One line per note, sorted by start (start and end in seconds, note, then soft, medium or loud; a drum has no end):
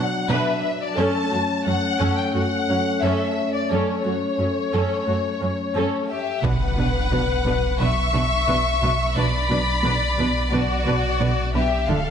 0.00 0.95 F#3 soft
0.00 0.95 D4 soft
0.00 0.30 F#5 medium
0.30 0.38 B2 medium
0.30 0.62 D4 medium
0.30 0.62 B4 medium
0.30 0.82 E5 medium
0.82 0.99 D5 medium
0.98 1.06 F#2 medium
0.98 6.08 A3 soft
0.98 1.30 C#4 medium
0.98 6.08 C#4 soft
0.98 1.30 A4 medium
0.98 1.67 A5 medium
1.32 1.41 F#2 soft
1.32 1.40 A3 soft
1.32 1.40 F#4 soft
1.66 1.75 F#2 soft
1.66 1.74 F#3 soft
1.66 1.74 C#4 soft
1.66 2.17 F#5 medium
2.00 2.08 F#2 medium
2.00 2.32 C#4 medium
2.00 2.32 A4 medium
2.18 2.35 G5 medium
2.34 2.43 F#2 soft
2.34 2.42 A3 soft
2.34 2.42 F#4 soft
2.34 3.01 F#5 medium
2.69 2.77 F#2 soft
2.69 2.77 F#3 soft
2.69 2.77 C#4 soft
3.02 3.11 F#2 medium
3.02 3.35 C#4 medium
3.02 3.35 A4 medium
3.02 3.54 E5 medium
3.54 3.71 D5 medium
3.70 3.79 F#2 soft
3.70 4.03 C#4 soft
3.70 4.03 A4 soft
3.70 6.09 C#5 medium
4.05 4.14 F#2 soft
4.05 4.13 A3 soft
4.05 4.13 F#4 soft
4.39 4.48 F#2 soft
4.39 4.47 F#3 soft
4.39 4.47 C#4 soft
4.73 4.82 F#2 medium
4.73 5.05 C#4 medium
4.73 5.05 A4 medium
5.07 5.16 F#2 soft
5.07 5.15 A3 soft
5.07 5.15 F#4 soft
5.41 5.50 F#2 soft
5.41 5.49 F#3 soft
5.41 5.49 C#4 soft
5.75 5.84 F#2 soft
5.75 6.07 C#4 soft
5.75 6.07 A4 medium
6.10 6.42 G4 soft
6.10 6.42 E5 medium
6.44 11.90 B1 medium
6.44 6.52 B1 soft
6.44 6.52 B2 soft
6.44 6.52 D4 soft
6.44 6.52 B4 soft
6.44 7.80 B4 medium
6.44 7.81 F#5 medium
6.44 impact soft
6.78 6.86 B1 soft
6.78 6.86 B2 soft
6.78 6.86 D4 soft
6.78 6.86 B4 soft
7.12 7.20 B1 soft
7.12 7.20 B2 soft
7.12 7.21 D4 soft
7.12 7.21 B4 soft
7.46 7.54 B1 soft
7.46 7.54 B2 soft
7.46 7.54 D4 soft
7.46 7.54 B4 soft
7.80 7.88 B1 soft
7.80 7.89 B2 soft
7.80 7.88 D4 soft
7.80 7.88 B4 soft
7.80 9.14 E5 medium
7.80 9.17 C#6 medium
8.14 8.22 B1 soft
8.14 8.23 B2 soft
8.14 8.22 D4 soft
8.14 8.22 B4 soft
8.48 8.56 B1 soft
8.48 8.57 B2 soft
8.48 8.56 D4 soft
8.48 8.56 B4 soft
8.82 8.90 B1 soft
8.82 8.90 B2 soft
8.82 8.90 D4 soft
8.82 8.90 B4 soft
9.16 9.24 B1 soft
9.16 9.25 B2 soft
9.16 9.24 D4 soft
9.16 9.24 B4 soft
9.16 10.53 D5 medium
9.16 10.53 B5 medium
9.50 9.58 B1 soft
9.50 9.59 B2 soft
9.50 9.58 D4 soft
9.50 9.59 B4 soft
9.84 9.93 B1 medium
9.84 9.92 B2 medium
9.84 9.93 D4 soft
9.84 9.93 B4 soft
10.19 10.27 B1 soft
10.19 10.27 B2 medium
10.19 10.27 D4 soft
10.19 10.27 B4 soft
10.52 10.61 B1 soft
10.52 10.60 B2 soft
10.52 10.60 D4 soft
10.52 11.55 F#4 medium
10.52 10.60 B4 soft
10.52 11.53 D5 medium
10.86 10.95 B1 soft
10.86 10.95 B2 soft
10.86 10.95 D4 soft
10.86 10.94 B4 soft
11.21 11.29 B1 medium
11.21 11.29 B2 medium
11.21 11.29 D4 soft
11.21 11.29 B4 soft
11.55 11.63 B1 soft
11.55 11.63 B2 soft
11.55 11.63 D4 soft
11.55 11.89 G4 medium
11.55 11.63 B4 soft
11.55 11.89 E5 medium
11.89 12.10 D1 medium
11.89 11.97 D2 medium
11.89 11.97 D3 soft
11.89 11.97 D4 soft
11.89 11.97 A4 soft
11.89 12.10 A4 medium
11.89 12.10 F5 medium